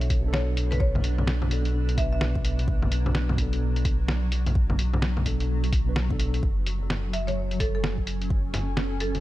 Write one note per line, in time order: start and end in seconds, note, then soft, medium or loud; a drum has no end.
0.00 6.41 B1 medium
0.00 0.19 B2 medium
0.00 6.43 B2 medium
0.00 9.20 F#3 medium
0.00 0.20 B3 medium
0.00 0.22 D4 medium
0.00 6.43 D4 medium
0.00 0.15 E4 medium
0.00 0.23 A4 medium
0.00 closed hi-hat soft
0.10 kick loud
0.10 closed hi-hat medium
0.20 1.46 B2 loud
0.20 1.48 B3 medium
0.26 1.49 D4 medium
0.26 1.50 A4 loud
0.33 0.58 C#5 loud
0.33 snare loud
0.57 closed hi-hat medium
0.71 0.78 B4 medium
0.71 closed hi-hat soft
0.71 low bongo soft
0.80 1.05 C#5 medium
0.80 kick loud
0.95 low bongo medium
1.04 closed hi-hat medium
1.18 low bongo medium
1.27 snare loud
1.42 low bongo medium
1.49 1.93 B2 medium
1.49 1.95 B3 medium
1.49 1.96 D4 medium
1.49 closed hi-hat medium
1.53 1.96 A4 medium
1.65 closed hi-hat soft
1.89 closed hi-hat soft
1.94 3.33 B2 medium
1.94 3.35 B3 medium
1.94 kick loud
1.94 closed hi-hat medium
1.98 3.37 D4 medium
1.98 3.38 B4 medium
1.98 2.07 E5 medium
2.12 2.18 E5 medium
2.21 snare loud
2.35 kick loud
2.45 closed hi-hat medium
2.59 closed hi-hat soft
2.68 kick loud
2.82 low bongo medium
2.92 closed hi-hat medium
3.06 low bongo medium
3.15 snare medium
3.29 low bongo medium
3.34 3.94 B2 medium
3.34 3.95 B3 medium
3.34 kick medium
3.38 3.97 D4 medium
3.38 closed hi-hat medium
3.42 3.98 A4 medium
3.53 closed hi-hat soft
3.76 closed hi-hat soft
3.85 kick loud
3.85 closed hi-hat medium
4.08 snare loud
4.32 closed hi-hat medium
4.46 closed hi-hat soft
4.46 low bongo medium
4.55 kick loud
4.70 low bongo medium
4.79 closed hi-hat medium
4.93 low bongo medium
5.02 snare loud
5.17 low bongo medium
5.24 5.69 B2 medium
5.24 5.70 B3 medium
5.24 5.71 D4 medium
5.24 5.71 A4 medium
5.24 kick medium
5.24 closed hi-hat medium
5.40 closed hi-hat soft
5.64 closed hi-hat soft
5.73 kick loud
5.73 closed hi-hat medium
5.85 5.90 B2 medium
5.85 5.91 B3 medium
5.85 5.92 D4 medium
5.85 5.92 B4 medium
5.96 snare loud
6.08 6.41 B2 medium
6.08 6.41 B3 medium
6.08 6.42 D4 medium
6.08 6.43 A4 loud
6.08 kick loud
6.20 closed hi-hat medium
6.34 closed hi-hat soft
6.43 9.20 F#1 medium
6.43 kick loud
6.62 9.20 G#5 medium
6.66 closed hi-hat medium
6.90 snare loud
6.90 low bongo soft
6.99 9.20 C#4 medium
7.13 7.25 E5 medium
7.13 closed hi-hat medium
7.27 7.52 C#5 medium
7.27 closed hi-hat soft
7.27 low bongo soft
7.51 closed hi-hat soft
7.60 7.69 A4 medium
7.60 kick medium
7.60 closed hi-hat medium
7.66 9.20 A4 medium
7.75 7.80 A4 medium
7.84 snare loud
7.98 kick medium
8.07 closed hi-hat medium
8.22 closed hi-hat soft
8.30 kick loud
8.54 snare medium
8.54 closed hi-hat medium
8.54 low bongo medium
8.77 snare loud
9.00 9.20 A4 medium
9.00 closed hi-hat medium
9.15 closed hi-hat soft
9.15 low bongo soft